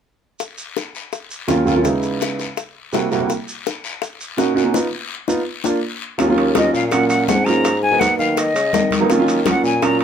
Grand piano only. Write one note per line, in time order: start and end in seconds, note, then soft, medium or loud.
1.47 1.61 D#2 medium
1.47 1.61 F#3 medium
1.47 1.61 A#3 medium
1.47 1.61 C#4 medium
1.47 1.62 F4 medium
1.65 1.72 D#2 medium
1.65 1.72 F#3 medium
1.65 1.73 A#3 medium
1.65 1.73 C#4 medium
1.65 1.73 F4 medium
1.74 1.84 D#2 medium
1.74 1.84 F#3 medium
1.74 1.85 A#3 medium
1.74 1.85 C#4 medium
1.74 1.85 F4 medium
1.83 2.42 C#3 medium
1.83 2.42 G#3 medium
1.83 2.42 B3 medium
1.83 2.42 D#4 medium
1.83 2.43 E4 medium
2.93 3.06 C3 medium
2.93 3.06 G3 medium
2.93 3.06 A#3 medium
2.93 3.06 E4 medium
2.93 3.06 F#4 medium
3.11 3.18 C3 medium
3.11 3.18 G3 medium
3.11 3.18 A#3 medium
3.11 3.18 E4 medium
3.11 3.18 F#4 medium
3.20 3.29 C3 medium
3.20 3.30 G3 medium
3.20 3.30 A#3 medium
3.20 3.30 E4 medium
3.20 3.30 F#4 medium
4.37 4.50 B2 medium
4.37 4.51 A#3 medium
4.37 4.51 C#4 medium
4.37 4.51 D#4 medium
4.37 4.51 F#4 medium
4.54 4.62 B2 medium
4.54 4.62 A#3 medium
4.54 4.62 C#4 medium
4.54 4.62 D#4 medium
4.54 4.63 F#4 medium
4.63 4.74 B2 medium
4.63 4.74 A#3 medium
4.63 4.74 C#4 medium
4.63 4.72 D#4 medium
4.63 4.75 F#4 medium
4.74 4.86 B3 medium
4.74 4.86 D#4 medium
4.74 4.86 F4 medium
5.28 5.40 B3 medium
5.28 5.40 D#4 medium
5.28 5.40 F4 medium
5.65 5.77 A#3 medium
5.65 5.77 D4 medium
5.65 5.77 F4 medium
6.18 6.25 F#3 medium
6.18 6.26 A#3 medium
6.18 6.26 C#4 medium
6.18 6.26 F4 medium
6.29 6.48 F#3 medium
6.29 6.48 A#3 medium
6.29 6.48 C#4 medium
6.29 6.48 F4 medium
6.55 6.81 F#3 medium
6.55 6.81 A#3 medium
6.55 6.81 C#4 medium
6.55 6.82 F4 medium
6.92 7.30 F#3 medium
6.92 7.30 A#3 medium
6.92 7.31 C#4 medium
6.92 7.31 F4 medium
7.46 7.65 F#3 medium
7.46 7.65 A#3 medium
7.46 7.65 C#4 medium
7.46 7.65 F4 medium
7.91 8.42 F#3 medium
7.91 8.42 A#3 medium
7.91 8.43 B3 medium
7.91 8.43 D#4 medium
9.00 9.07 F#3 medium
9.00 9.07 A#3 medium
9.00 9.07 B3 medium
9.00 9.07 D#4 medium
9.09 9.16 F#3 medium
9.09 9.16 A#3 medium
9.09 9.16 C#4 medium
9.09 9.17 F4 medium
9.18 9.37 F#3 medium
9.18 9.38 A#3 medium
9.18 9.38 C#4 medium
9.18 9.38 F4 medium
9.46 9.71 F#3 medium
9.46 9.71 A#3 medium
9.46 9.72 C#4 medium
9.46 9.72 F4 medium
9.82 10.04 F#3 medium
9.82 10.04 A#3 medium
9.82 10.04 C#4 medium
9.82 10.04 F4 medium